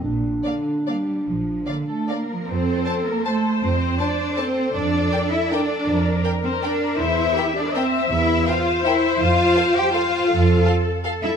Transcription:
<<
  \new Staff \with { instrumentName = "Violin section" } { \time 3/4 \key bes \major \tempo 4 = 158 r4 f''4 f''4 | r4 f''8 a'8 <bes' f''>4 | \key f \major c''4. bes'8 a'4 | c''4 d''4 c''4 |
d''4. e''8 d''4~ | d''4 r8 c''8 d''4 | e''4. d''8 c''4 | e''4 f''4 e''4 |
f''4. g''8 f''4~ | f''4 r4. e''8 | }
  \new Staff \with { instrumentName = "Violin section" } { \time 3/4 \key bes \major r4 d''4 d''4 | r4 d''4 d''4 | \key f \major r4 <c'' a''>4 <c'' a''>4 | r4 <c'' a''>4 <c'' a''>4 |
r4 <bes' g''>4 <bes' g''>4 | r4 <bes' g''>4 <bes' g''>4 | r4 <bes' g''>4 <bes' g''>4 | r4 <bes' g''>4 <bes' g''>4 |
r4 <a' f''>4 <a' f''>4 | r4 <a' f''>4 <a' f''>4 | }
  \new Staff \with { instrumentName = "Viola section" } { \time 3/4 \key bes \major r4 bes4 bes4 | r4 bes4 bes4 | \key f \major a'2 c''4~ | c''2 a'4~ |
a'2. | bes'2. | c''4 g'4 e''4~ | e''4 c''2~ |
c''2. | a'2 a'4 | }
  \new Staff \with { instrumentName = "Clarinet" } { \time 3/4 \key bes \major d'2.~ | d'2~ d'8 r8 | \key f \major r2. | r2. |
r2. | r2. | r2. | r2. |
r2. | r2. | }
  \new Staff \with { instrumentName = "Cello section" } { \time 3/4 \key bes \major << { bes,4 r2 | r4. a8 bes4 | \key f \major c'4. bes8 a4 | c'4 d'4 c'4 |
d'4. e'8 d'4~ | d'4 r8 c'8 d'4 | e'4. d'8 c'4 | e'4 f'4 e'4 |
f'4. g'8 f'4~ | f'4 r4. e'8 | } \\ { r4 d4 g4 | f4 d8 r4 f8 | r2. | r2. |
r2. | r2. | r2. | r2. |
r2. | r2. | } >> }
  \new Staff \with { instrumentName = "Double bass section" } { \clef bass \time 3/4 \key bes \major bes,,4 r2 | bes,,4 r2 | \key f \major f,4 r2 | f,4 r2 |
f,4 r2 | f,4 r2 | e,4 r2 | e,4 r2 |
f,4 r2 | f,4 r2 | }
>>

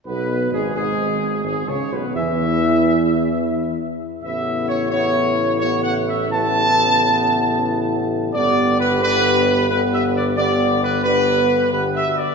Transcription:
<<
  \new Staff \with { instrumentName = "Trumpet section" } { \time 3/4 \key a \lydian \tempo 4 = 88 \tuplet 3/2 { b'4 gis'8 } gis'4 \tuplet 3/2 { gis'8 cis''8 b'8 } | e''2~ e''8 r8 | \tuplet 3/2 { e''4 cis''8 } cis''4 \tuplet 3/2 { cis''8 fis''8 e''8 } | a''2~ a''8 r8 |
\tuplet 3/2 { d''4 b'8 } b'4 \tuplet 3/2 { b'8 e''8 d''8 } | \tuplet 3/2 { d''4 b'8 } b'4 \tuplet 3/2 { b'8 e''8 d''8 } | }
  \new Staff \with { instrumentName = "French horn section" } { \time 3/4 \key a \lydian << { \tuplet 3/2 { b4 gis8 } gis4 \tuplet 3/2 { gis8 cis'8 b8 } | e'2~ e'8 r8 | e'4 e'4 e'4 | e'2 e'4 |
g'4 g'4 g'4 | g'4 g'4 g'8 fis'8 | } \\ { r2. | r2. | b4 b4 b4 | b2. |
b4 b4 b4 | b4 b4 b4 | } >> }
  \new Staff \with { instrumentName = "Trombone section" } { \clef bass \time 3/4 \key a \lydian \tuplet 3/2 { b,4 gis,8 } gis,4 \tuplet 3/2 { gis,8 cis8 b,8 } | e2~ e8 r8 | <cis b>4 <cis b>4 <cis b>4 | <cis b>2. |
<d b>4 <d b>4 <d b>4 | <d b>4 <d b>4 <d b>4 | }
  \new Staff \with { instrumentName = "Tuba" } { \clef bass \time 3/4 \key a \lydian \tuplet 3/2 { b,,4 gis,,8 } gis,,4 \tuplet 3/2 { gis,,8 cis,8 b,,8 } | e,2~ e,8 r8 | a,,2.~ | a,,2. |
g,,2.~ | g,,2~ g,,8 r8 | }
>>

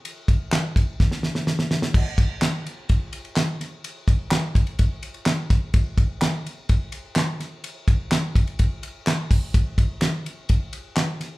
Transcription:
\new DrumStaff \with { instrumentName = "Drums" } \drummode { \time 4/4 \tempo 4 = 126 cymr8 <bd cymr>8 <hc cymr sn>8 <bd cymr>8 <bd sn>16 sn16 sn16 sn16 sn16 sn16 sn16 sn16 | <cymc bd>8 <bd cymr>8 <hc cymr sn>8 cymr8 <bd cymr>8 cymr16 cymr16 <hc cymr sn>8 <cymr sn>8 | cymr8 <bd cymr>8 <hc cymr sn>8 <bd cymr>16 cymr16 <bd cymr>8 cymr16 cymr16 <hc cymr sn>8 <bd cymr sn>8 | <bd cymr>8 <bd cymr>8 <hc cymr sn>8 cymr8 <bd cymr>8 cymr8 <hc cymr sn>8 <cymr sn>8 |
cymr8 <bd cymr>8 <hc cymr sn>8 <bd cymr>16 cymr16 <bd cymr>8 cymr8 <hc cymr sn>8 <hho bd cymr>8 | <hhp bd cymr>8 <bd cymr>8 <hc cymr sn>8 cymr8 <bd cymr>8 cymr8 <hc cymr sn>8 <cymr sn>8 | }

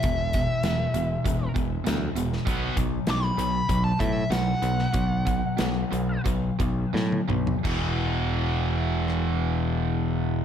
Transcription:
<<
  \new Staff \with { instrumentName = "Lead electric guitar" } { \time 4/4 \key b \phrygian \tempo 4 = 94 e''2~ e''8 r4. | r4 d'''16 b''4 a''16 e''8 fis''4~ | fis''2 r2 | r1 | }
  \new Staff \with { instrumentName = "Distorted electric guitar" } { \clef bass \time 4/4 \key b \phrygian <e, b,>8 <e, b,>8 <e, b,>8 <e, b,>8 <e, b,>8 <e, b,>8 <e, b,>8 <e, b,>8 | <b, fis b>8 <b, fis>8 <b, fis>8 <b, fis>8 <b, fis>8 <b, fis>8 <b, fis>8 <b, fis>8 | <b, fis>8 <b, fis>8 <b, fis>8 <b, fis>8 <b, fis>8 <b, fis>8 <b, fis>8 <b, fis>8 | <e, b, e>1 | }
  \new Staff \with { instrumentName = "Distorted electric guitar" } { \clef bass \time 4/4 \key b \phrygian <e, b,>8 <e, b,>8 <e, b,>8 <e, b,>8 <e, b,>8 <e, b,>8 <e, b,>8 <e, b,>8 | <b, fis b>8 <b, fis>8 <b, fis>8 <b, fis>8 <b, fis>8 <b, fis>8 <b, fis>8 <b, fis>8 | <b, fis>8 <b, fis>8 <b, fis>8 <b, fis>8 <b, fis>8 <b, fis>8 <b, fis>8 <b, fis>8 | <e, b, e>1 | }
  \new Staff \with { instrumentName = "Picked electric bass" } { \clef bass \time 4/4 \key b \phrygian e,,4 e,,8 e,,8 e,,8 e,,8 d,8 e,,8 | b,,8 b,,8 b,,8 b,,8 b,,8 a,8 b,,8 b,,8 | b,,4 b,,8 b,,8 b,,8 b,,8 a,8 b,,8 | e,,1 | }
  \new DrumStaff \with { instrumentName = "Drums" } \drummode { \time 4/4 <hh bd>8 <hh bd>8 <hh sn>8 hh8 <hh bd>8 <hh bd>8 <hh sn>8 hh16 sn16 | <hh bd>8 <hh bd>8 <hh sn>8 hh8 <hh bd>8 <hh bd>8 <hh sn>8 hh16 sn16 | <hh bd>8 <hh bd>8 <hh sn>8 hh8 <hh bd>8 <hh bd>8 sn16 tommh16 toml16 tomfh16 | <cymc bd>4 r4 ss4 r4 | }
>>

